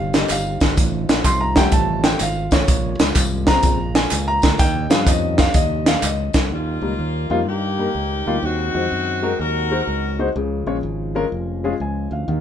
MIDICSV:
0, 0, Header, 1, 6, 480
1, 0, Start_track
1, 0, Tempo, 479233
1, 778, Time_signature, 4, 2, 24, 8
1, 12425, End_track
2, 0, Start_track
2, 0, Title_t, "Grand piano"
2, 0, Program_c, 0, 0
2, 0, Note_on_c, 0, 77, 96
2, 118, Note_off_c, 0, 77, 0
2, 145, Note_on_c, 0, 75, 78
2, 307, Note_off_c, 0, 75, 0
2, 309, Note_on_c, 0, 77, 83
2, 596, Note_off_c, 0, 77, 0
2, 1253, Note_on_c, 0, 84, 95
2, 1403, Note_off_c, 0, 84, 0
2, 1409, Note_on_c, 0, 82, 89
2, 1570, Note_on_c, 0, 51, 60
2, 1574, Note_on_c, 0, 55, 53
2, 1577, Note_on_c, 0, 79, 100
2, 1582, Note_on_c, 0, 57, 69
2, 1600, Note_off_c, 0, 82, 0
2, 1601, Note_on_c, 0, 78, 70
2, 1621, Note_off_c, 0, 78, 0
2, 1725, Note_off_c, 0, 79, 0
2, 1733, Note_on_c, 0, 81, 96
2, 2031, Note_off_c, 0, 81, 0
2, 2052, Note_on_c, 0, 79, 86
2, 2181, Note_off_c, 0, 51, 0
2, 2183, Note_off_c, 0, 55, 0
2, 2187, Note_off_c, 0, 57, 0
2, 2217, Note_off_c, 0, 79, 0
2, 2222, Note_on_c, 0, 77, 89
2, 2515, Note_off_c, 0, 77, 0
2, 2535, Note_on_c, 0, 73, 79
2, 2978, Note_off_c, 0, 73, 0
2, 3475, Note_on_c, 0, 49, 60
2, 3483, Note_on_c, 0, 56, 49
2, 3484, Note_on_c, 0, 82, 122
2, 3488, Note_on_c, 0, 60, 71
2, 3755, Note_off_c, 0, 49, 0
2, 3759, Note_off_c, 0, 56, 0
2, 3761, Note_off_c, 0, 60, 0
2, 3963, Note_on_c, 0, 80, 86
2, 3982, Note_off_c, 0, 82, 0
2, 4284, Note_on_c, 0, 82, 106
2, 4293, Note_off_c, 0, 80, 0
2, 4600, Note_on_c, 0, 79, 107
2, 4613, Note_off_c, 0, 82, 0
2, 4899, Note_on_c, 0, 53, 47
2, 4905, Note_on_c, 0, 55, 46
2, 4910, Note_on_c, 0, 61, 52
2, 4910, Note_on_c, 0, 77, 88
2, 4925, Note_off_c, 0, 79, 0
2, 5084, Note_off_c, 0, 77, 0
2, 5084, Note_on_c, 0, 75, 80
2, 5401, Note_on_c, 0, 77, 98
2, 5406, Note_off_c, 0, 75, 0
2, 5563, Note_on_c, 0, 75, 89
2, 5569, Note_off_c, 0, 77, 0
2, 5883, Note_on_c, 0, 77, 90
2, 5886, Note_off_c, 0, 75, 0
2, 6034, Note_off_c, 0, 77, 0
2, 6066, Note_on_c, 0, 75, 71
2, 6346, Note_off_c, 0, 75, 0
2, 6472, Note_off_c, 0, 53, 0
2, 6475, Note_off_c, 0, 55, 0
2, 6477, Note_off_c, 0, 61, 0
2, 6519, Note_on_c, 0, 51, 51
2, 6828, Note_on_c, 0, 55, 52
2, 6834, Note_on_c, 0, 58, 50
2, 6835, Note_on_c, 0, 63, 53
2, 6839, Note_on_c, 0, 70, 59
2, 6915, Note_off_c, 0, 55, 0
2, 6918, Note_off_c, 0, 58, 0
2, 6918, Note_off_c, 0, 63, 0
2, 6920, Note_off_c, 0, 70, 0
2, 7275, Note_off_c, 0, 51, 0
2, 7314, Note_on_c, 0, 55, 73
2, 7316, Note_on_c, 0, 58, 70
2, 7317, Note_on_c, 0, 63, 64
2, 7323, Note_on_c, 0, 65, 90
2, 7398, Note_off_c, 0, 55, 0
2, 7399, Note_off_c, 0, 58, 0
2, 7400, Note_off_c, 0, 63, 0
2, 7403, Note_off_c, 0, 65, 0
2, 7793, Note_on_c, 0, 55, 62
2, 7803, Note_on_c, 0, 58, 57
2, 7804, Note_on_c, 0, 63, 60
2, 7805, Note_on_c, 0, 70, 69
2, 7878, Note_off_c, 0, 55, 0
2, 7883, Note_off_c, 0, 58, 0
2, 7883, Note_off_c, 0, 63, 0
2, 7884, Note_off_c, 0, 70, 0
2, 8276, Note_on_c, 0, 55, 68
2, 8281, Note_on_c, 0, 58, 69
2, 8287, Note_on_c, 0, 63, 66
2, 8290, Note_on_c, 0, 65, 85
2, 8361, Note_off_c, 0, 55, 0
2, 8363, Note_off_c, 0, 58, 0
2, 8366, Note_off_c, 0, 63, 0
2, 8368, Note_off_c, 0, 65, 0
2, 8453, Note_on_c, 0, 51, 56
2, 8759, Note_on_c, 0, 56, 52
2, 8760, Note_on_c, 0, 63, 49
2, 8761, Note_on_c, 0, 66, 53
2, 8767, Note_on_c, 0, 72, 56
2, 8843, Note_off_c, 0, 56, 0
2, 8843, Note_off_c, 0, 63, 0
2, 8844, Note_off_c, 0, 66, 0
2, 8847, Note_off_c, 0, 72, 0
2, 9205, Note_off_c, 0, 51, 0
2, 9240, Note_on_c, 0, 56, 73
2, 9243, Note_on_c, 0, 63, 71
2, 9249, Note_on_c, 0, 66, 70
2, 9251, Note_on_c, 0, 70, 92
2, 9324, Note_off_c, 0, 56, 0
2, 9326, Note_off_c, 0, 63, 0
2, 9329, Note_off_c, 0, 66, 0
2, 9330, Note_off_c, 0, 70, 0
2, 9725, Note_on_c, 0, 56, 60
2, 9726, Note_on_c, 0, 63, 58
2, 9732, Note_on_c, 0, 72, 69
2, 9733, Note_on_c, 0, 66, 57
2, 9807, Note_off_c, 0, 56, 0
2, 9808, Note_off_c, 0, 63, 0
2, 9811, Note_off_c, 0, 66, 0
2, 9811, Note_off_c, 0, 72, 0
2, 10209, Note_on_c, 0, 56, 75
2, 10210, Note_on_c, 0, 63, 74
2, 10211, Note_on_c, 0, 66, 64
2, 10219, Note_on_c, 0, 72, 82
2, 10290, Note_off_c, 0, 56, 0
2, 10291, Note_off_c, 0, 63, 0
2, 10291, Note_off_c, 0, 66, 0
2, 10296, Note_off_c, 0, 72, 0
2, 10378, Note_on_c, 0, 49, 69
2, 10685, Note_on_c, 0, 56, 69
2, 10686, Note_on_c, 0, 65, 57
2, 10687, Note_on_c, 0, 61, 68
2, 10691, Note_on_c, 0, 73, 75
2, 10770, Note_off_c, 0, 56, 0
2, 10770, Note_off_c, 0, 61, 0
2, 10770, Note_off_c, 0, 65, 0
2, 10772, Note_off_c, 0, 73, 0
2, 11132, Note_off_c, 0, 49, 0
2, 11169, Note_on_c, 0, 56, 79
2, 11173, Note_on_c, 0, 61, 67
2, 11175, Note_on_c, 0, 65, 70
2, 11178, Note_on_c, 0, 70, 96
2, 11252, Note_off_c, 0, 56, 0
2, 11254, Note_off_c, 0, 61, 0
2, 11255, Note_off_c, 0, 65, 0
2, 11257, Note_off_c, 0, 70, 0
2, 11659, Note_on_c, 0, 56, 79
2, 11663, Note_on_c, 0, 61, 63
2, 11667, Note_on_c, 0, 68, 83
2, 11668, Note_on_c, 0, 65, 70
2, 11738, Note_off_c, 0, 56, 0
2, 11740, Note_off_c, 0, 61, 0
2, 11742, Note_off_c, 0, 68, 0
2, 11743, Note_off_c, 0, 65, 0
2, 11833, Note_on_c, 0, 80, 58
2, 12125, Note_off_c, 0, 80, 0
2, 12142, Note_on_c, 0, 77, 57
2, 12302, Note_on_c, 0, 51, 70
2, 12425, Note_off_c, 0, 51, 0
2, 12425, Note_off_c, 0, 77, 0
2, 12425, End_track
3, 0, Start_track
3, 0, Title_t, "Horn section"
3, 0, Program_c, 1, 61
3, 6542, Note_on_c, 1, 58, 54
3, 6548, Note_on_c, 1, 65, 68
3, 7452, Note_off_c, 1, 58, 0
3, 7455, Note_off_c, 1, 65, 0
3, 7488, Note_on_c, 1, 63, 64
3, 7490, Note_on_c, 1, 58, 54
3, 7499, Note_on_c, 1, 67, 74
3, 8407, Note_off_c, 1, 63, 0
3, 8408, Note_off_c, 1, 58, 0
3, 8453, Note_off_c, 1, 67, 0
3, 8461, Note_on_c, 1, 66, 89
3, 8466, Note_on_c, 1, 60, 64
3, 9378, Note_off_c, 1, 60, 0
3, 9416, Note_off_c, 1, 66, 0
3, 9420, Note_on_c, 1, 70, 87
3, 9428, Note_on_c, 1, 66, 64
3, 10211, Note_off_c, 1, 70, 0
3, 10342, Note_off_c, 1, 66, 0
3, 12425, End_track
4, 0, Start_track
4, 0, Title_t, "French horn section"
4, 0, Program_c, 2, 60
4, 0, Note_on_c, 2, 55, 75
4, 0, Note_on_c, 2, 60, 67
4, 0, Note_on_c, 2, 63, 74
4, 0, Note_on_c, 2, 67, 89
4, 754, Note_off_c, 2, 67, 0
4, 757, Note_off_c, 2, 55, 0
4, 773, Note_on_c, 2, 65, 81
4, 777, Note_on_c, 2, 57, 74
4, 2649, Note_off_c, 2, 60, 0
4, 2654, Note_off_c, 2, 63, 0
4, 2672, Note_off_c, 2, 57, 0
4, 2694, Note_on_c, 2, 56, 76
4, 2703, Note_on_c, 2, 58, 72
4, 4563, Note_off_c, 2, 65, 0
4, 4587, Note_off_c, 2, 56, 0
4, 4596, Note_on_c, 2, 55, 81
4, 4596, Note_on_c, 2, 63, 86
4, 6338, Note_off_c, 2, 55, 0
4, 6338, Note_off_c, 2, 58, 0
4, 6338, Note_off_c, 2, 63, 0
4, 6509, Note_on_c, 2, 51, 65
4, 6509, Note_on_c, 2, 58, 61
4, 6513, Note_on_c, 2, 55, 58
4, 6515, Note_on_c, 2, 63, 70
4, 8419, Note_off_c, 2, 51, 0
4, 8419, Note_off_c, 2, 58, 0
4, 8421, Note_off_c, 2, 55, 0
4, 8437, Note_on_c, 2, 60, 62
4, 8438, Note_on_c, 2, 54, 73
4, 8446, Note_on_c, 2, 56, 67
4, 10330, Note_off_c, 2, 63, 0
4, 10349, Note_off_c, 2, 54, 0
4, 10349, Note_off_c, 2, 60, 0
4, 10353, Note_off_c, 2, 56, 0
4, 10367, Note_on_c, 2, 61, 60
4, 10368, Note_on_c, 2, 53, 69
4, 10372, Note_on_c, 2, 65, 77
4, 10375, Note_on_c, 2, 56, 59
4, 12277, Note_off_c, 2, 61, 0
4, 12278, Note_off_c, 2, 53, 0
4, 12278, Note_on_c, 2, 63, 70
4, 12280, Note_off_c, 2, 65, 0
4, 12287, Note_on_c, 2, 51, 70
4, 12292, Note_on_c, 2, 58, 61
4, 12425, Note_off_c, 2, 51, 0
4, 12425, Note_off_c, 2, 56, 0
4, 12425, Note_off_c, 2, 58, 0
4, 12425, Note_off_c, 2, 63, 0
4, 12425, End_track
5, 0, Start_track
5, 0, Title_t, "Fingered electric bass"
5, 0, Program_c, 3, 33
5, 0, Note_on_c, 3, 31, 94
5, 225, Note_off_c, 3, 31, 0
5, 305, Note_on_c, 3, 31, 81
5, 569, Note_off_c, 3, 31, 0
5, 613, Note_on_c, 3, 32, 81
5, 754, Note_off_c, 3, 32, 0
5, 777, Note_on_c, 3, 33, 99
5, 1044, Note_off_c, 3, 33, 0
5, 1093, Note_on_c, 3, 34, 86
5, 1233, Note_off_c, 3, 34, 0
5, 1247, Note_on_c, 3, 36, 93
5, 1658, Note_off_c, 3, 36, 0
5, 1727, Note_on_c, 3, 33, 82
5, 2137, Note_off_c, 3, 33, 0
5, 2211, Note_on_c, 3, 32, 92
5, 2478, Note_off_c, 3, 32, 0
5, 2520, Note_on_c, 3, 33, 88
5, 2663, Note_off_c, 3, 33, 0
5, 2682, Note_on_c, 3, 34, 96
5, 2952, Note_off_c, 3, 34, 0
5, 3002, Note_on_c, 3, 37, 80
5, 3144, Note_off_c, 3, 37, 0
5, 3161, Note_on_c, 3, 36, 92
5, 3571, Note_off_c, 3, 36, 0
5, 3641, Note_on_c, 3, 34, 91
5, 4050, Note_off_c, 3, 34, 0
5, 4125, Note_on_c, 3, 37, 95
5, 4392, Note_off_c, 3, 37, 0
5, 4443, Note_on_c, 3, 38, 81
5, 4582, Note_off_c, 3, 38, 0
5, 4597, Note_on_c, 3, 39, 111
5, 4866, Note_off_c, 3, 39, 0
5, 4907, Note_on_c, 3, 43, 90
5, 5052, Note_off_c, 3, 43, 0
5, 5072, Note_on_c, 3, 41, 99
5, 5484, Note_off_c, 3, 41, 0
5, 5554, Note_on_c, 3, 39, 78
5, 5965, Note_off_c, 3, 39, 0
5, 6034, Note_on_c, 3, 37, 97
5, 6304, Note_off_c, 3, 37, 0
5, 6354, Note_on_c, 3, 36, 93
5, 6496, Note_off_c, 3, 36, 0
5, 6508, Note_on_c, 3, 39, 82
5, 6781, Note_off_c, 3, 39, 0
5, 6826, Note_on_c, 3, 37, 76
5, 6971, Note_off_c, 3, 37, 0
5, 7001, Note_on_c, 3, 39, 76
5, 7268, Note_off_c, 3, 39, 0
5, 7311, Note_on_c, 3, 41, 85
5, 7472, Note_off_c, 3, 41, 0
5, 7472, Note_on_c, 3, 43, 76
5, 7885, Note_off_c, 3, 43, 0
5, 7959, Note_on_c, 3, 37, 79
5, 8229, Note_off_c, 3, 37, 0
5, 8276, Note_on_c, 3, 38, 75
5, 8418, Note_off_c, 3, 38, 0
5, 8440, Note_on_c, 3, 39, 87
5, 8710, Note_off_c, 3, 39, 0
5, 8761, Note_on_c, 3, 41, 72
5, 8902, Note_off_c, 3, 41, 0
5, 8932, Note_on_c, 3, 42, 79
5, 9339, Note_off_c, 3, 42, 0
5, 9409, Note_on_c, 3, 39, 76
5, 9818, Note_off_c, 3, 39, 0
5, 9889, Note_on_c, 3, 37, 81
5, 10299, Note_off_c, 3, 37, 0
5, 10373, Note_on_c, 3, 37, 89
5, 10640, Note_off_c, 3, 37, 0
5, 10682, Note_on_c, 3, 34, 74
5, 10825, Note_off_c, 3, 34, 0
5, 10847, Note_on_c, 3, 32, 81
5, 11259, Note_off_c, 3, 32, 0
5, 11338, Note_on_c, 3, 29, 75
5, 11746, Note_off_c, 3, 29, 0
5, 11819, Note_on_c, 3, 37, 73
5, 12086, Note_off_c, 3, 37, 0
5, 12128, Note_on_c, 3, 38, 79
5, 12271, Note_off_c, 3, 38, 0
5, 12298, Note_on_c, 3, 39, 90
5, 12425, Note_off_c, 3, 39, 0
5, 12425, End_track
6, 0, Start_track
6, 0, Title_t, "Drums"
6, 134, Note_on_c, 9, 54, 51
6, 140, Note_on_c, 9, 38, 107
6, 140, Note_on_c, 9, 42, 72
6, 234, Note_off_c, 9, 54, 0
6, 240, Note_off_c, 9, 42, 0
6, 241, Note_off_c, 9, 38, 0
6, 292, Note_on_c, 9, 39, 87
6, 292, Note_on_c, 9, 54, 91
6, 299, Note_on_c, 9, 42, 85
6, 392, Note_off_c, 9, 39, 0
6, 392, Note_off_c, 9, 54, 0
6, 400, Note_off_c, 9, 42, 0
6, 605, Note_on_c, 9, 54, 52
6, 613, Note_on_c, 9, 42, 72
6, 614, Note_on_c, 9, 36, 87
6, 615, Note_on_c, 9, 38, 117
6, 705, Note_off_c, 9, 54, 0
6, 713, Note_off_c, 9, 42, 0
6, 715, Note_off_c, 9, 36, 0
6, 716, Note_off_c, 9, 38, 0
6, 770, Note_on_c, 9, 54, 67
6, 777, Note_on_c, 9, 36, 111
6, 779, Note_on_c, 9, 42, 95
6, 870, Note_off_c, 9, 54, 0
6, 877, Note_off_c, 9, 36, 0
6, 879, Note_off_c, 9, 42, 0
6, 1090, Note_on_c, 9, 54, 52
6, 1093, Note_on_c, 9, 42, 68
6, 1095, Note_on_c, 9, 38, 106
6, 1191, Note_off_c, 9, 54, 0
6, 1193, Note_off_c, 9, 42, 0
6, 1196, Note_off_c, 9, 38, 0
6, 1246, Note_on_c, 9, 42, 84
6, 1247, Note_on_c, 9, 36, 79
6, 1254, Note_on_c, 9, 39, 100
6, 1254, Note_on_c, 9, 54, 101
6, 1346, Note_off_c, 9, 42, 0
6, 1347, Note_off_c, 9, 36, 0
6, 1354, Note_off_c, 9, 39, 0
6, 1354, Note_off_c, 9, 54, 0
6, 1560, Note_on_c, 9, 38, 107
6, 1569, Note_on_c, 9, 36, 87
6, 1571, Note_on_c, 9, 42, 67
6, 1571, Note_on_c, 9, 54, 52
6, 1660, Note_off_c, 9, 38, 0
6, 1669, Note_off_c, 9, 36, 0
6, 1671, Note_off_c, 9, 42, 0
6, 1671, Note_off_c, 9, 54, 0
6, 1720, Note_on_c, 9, 42, 82
6, 1726, Note_on_c, 9, 36, 106
6, 1730, Note_on_c, 9, 54, 66
6, 1821, Note_off_c, 9, 42, 0
6, 1826, Note_off_c, 9, 36, 0
6, 1830, Note_off_c, 9, 54, 0
6, 2039, Note_on_c, 9, 54, 50
6, 2040, Note_on_c, 9, 38, 111
6, 2040, Note_on_c, 9, 42, 65
6, 2139, Note_off_c, 9, 54, 0
6, 2140, Note_off_c, 9, 38, 0
6, 2140, Note_off_c, 9, 42, 0
6, 2199, Note_on_c, 9, 42, 102
6, 2201, Note_on_c, 9, 39, 80
6, 2201, Note_on_c, 9, 54, 84
6, 2299, Note_off_c, 9, 42, 0
6, 2301, Note_off_c, 9, 39, 0
6, 2301, Note_off_c, 9, 54, 0
6, 2513, Note_on_c, 9, 54, 55
6, 2524, Note_on_c, 9, 36, 85
6, 2524, Note_on_c, 9, 42, 75
6, 2526, Note_on_c, 9, 38, 100
6, 2613, Note_off_c, 9, 54, 0
6, 2624, Note_off_c, 9, 36, 0
6, 2624, Note_off_c, 9, 42, 0
6, 2626, Note_off_c, 9, 38, 0
6, 2681, Note_on_c, 9, 54, 72
6, 2688, Note_on_c, 9, 36, 112
6, 2688, Note_on_c, 9, 42, 94
6, 2781, Note_off_c, 9, 54, 0
6, 2788, Note_off_c, 9, 36, 0
6, 2788, Note_off_c, 9, 42, 0
6, 2999, Note_on_c, 9, 42, 64
6, 2999, Note_on_c, 9, 54, 59
6, 3002, Note_on_c, 9, 38, 113
6, 3099, Note_off_c, 9, 54, 0
6, 3100, Note_off_c, 9, 42, 0
6, 3102, Note_off_c, 9, 38, 0
6, 3161, Note_on_c, 9, 36, 96
6, 3161, Note_on_c, 9, 42, 86
6, 3162, Note_on_c, 9, 39, 99
6, 3162, Note_on_c, 9, 54, 105
6, 3261, Note_off_c, 9, 36, 0
6, 3261, Note_off_c, 9, 42, 0
6, 3262, Note_off_c, 9, 39, 0
6, 3262, Note_off_c, 9, 54, 0
6, 3473, Note_on_c, 9, 38, 113
6, 3481, Note_on_c, 9, 54, 59
6, 3483, Note_on_c, 9, 36, 92
6, 3484, Note_on_c, 9, 42, 70
6, 3573, Note_off_c, 9, 38, 0
6, 3582, Note_off_c, 9, 54, 0
6, 3583, Note_off_c, 9, 36, 0
6, 3584, Note_off_c, 9, 42, 0
6, 3633, Note_on_c, 9, 42, 89
6, 3641, Note_on_c, 9, 36, 112
6, 3649, Note_on_c, 9, 54, 67
6, 3733, Note_off_c, 9, 42, 0
6, 3741, Note_off_c, 9, 36, 0
6, 3749, Note_off_c, 9, 54, 0
6, 3957, Note_on_c, 9, 42, 75
6, 3958, Note_on_c, 9, 38, 125
6, 3961, Note_on_c, 9, 54, 55
6, 4057, Note_off_c, 9, 42, 0
6, 4058, Note_off_c, 9, 38, 0
6, 4061, Note_off_c, 9, 54, 0
6, 4115, Note_on_c, 9, 39, 95
6, 4115, Note_on_c, 9, 54, 88
6, 4124, Note_on_c, 9, 42, 93
6, 4216, Note_off_c, 9, 39, 0
6, 4216, Note_off_c, 9, 54, 0
6, 4224, Note_off_c, 9, 42, 0
6, 4427, Note_on_c, 9, 54, 57
6, 4440, Note_on_c, 9, 42, 70
6, 4441, Note_on_c, 9, 36, 92
6, 4443, Note_on_c, 9, 38, 113
6, 4527, Note_off_c, 9, 54, 0
6, 4541, Note_off_c, 9, 36, 0
6, 4541, Note_off_c, 9, 42, 0
6, 4543, Note_off_c, 9, 38, 0
6, 4596, Note_on_c, 9, 54, 72
6, 4602, Note_on_c, 9, 36, 114
6, 4604, Note_on_c, 9, 42, 90
6, 4697, Note_off_c, 9, 54, 0
6, 4703, Note_off_c, 9, 36, 0
6, 4704, Note_off_c, 9, 42, 0
6, 4913, Note_on_c, 9, 42, 64
6, 4916, Note_on_c, 9, 38, 109
6, 4920, Note_on_c, 9, 54, 56
6, 5013, Note_off_c, 9, 42, 0
6, 5016, Note_off_c, 9, 38, 0
6, 5020, Note_off_c, 9, 54, 0
6, 5074, Note_on_c, 9, 36, 95
6, 5078, Note_on_c, 9, 42, 79
6, 5081, Note_on_c, 9, 39, 92
6, 5081, Note_on_c, 9, 54, 104
6, 5174, Note_off_c, 9, 36, 0
6, 5178, Note_off_c, 9, 42, 0
6, 5181, Note_off_c, 9, 39, 0
6, 5181, Note_off_c, 9, 54, 0
6, 5389, Note_on_c, 9, 38, 116
6, 5397, Note_on_c, 9, 36, 91
6, 5398, Note_on_c, 9, 54, 54
6, 5400, Note_on_c, 9, 42, 74
6, 5489, Note_off_c, 9, 38, 0
6, 5497, Note_off_c, 9, 36, 0
6, 5498, Note_off_c, 9, 54, 0
6, 5500, Note_off_c, 9, 42, 0
6, 5550, Note_on_c, 9, 42, 98
6, 5555, Note_on_c, 9, 36, 111
6, 5563, Note_on_c, 9, 54, 75
6, 5650, Note_off_c, 9, 42, 0
6, 5655, Note_off_c, 9, 36, 0
6, 5663, Note_off_c, 9, 54, 0
6, 5872, Note_on_c, 9, 54, 49
6, 5873, Note_on_c, 9, 38, 120
6, 5873, Note_on_c, 9, 42, 69
6, 5972, Note_off_c, 9, 54, 0
6, 5973, Note_off_c, 9, 38, 0
6, 5973, Note_off_c, 9, 42, 0
6, 6033, Note_on_c, 9, 42, 93
6, 6038, Note_on_c, 9, 39, 88
6, 6038, Note_on_c, 9, 54, 88
6, 6133, Note_off_c, 9, 42, 0
6, 6139, Note_off_c, 9, 39, 0
6, 6139, Note_off_c, 9, 54, 0
6, 6344, Note_on_c, 9, 54, 56
6, 6351, Note_on_c, 9, 42, 72
6, 6353, Note_on_c, 9, 38, 109
6, 6354, Note_on_c, 9, 36, 90
6, 6444, Note_off_c, 9, 54, 0
6, 6451, Note_off_c, 9, 42, 0
6, 6454, Note_off_c, 9, 36, 0
6, 6454, Note_off_c, 9, 38, 0
6, 12425, End_track
0, 0, End_of_file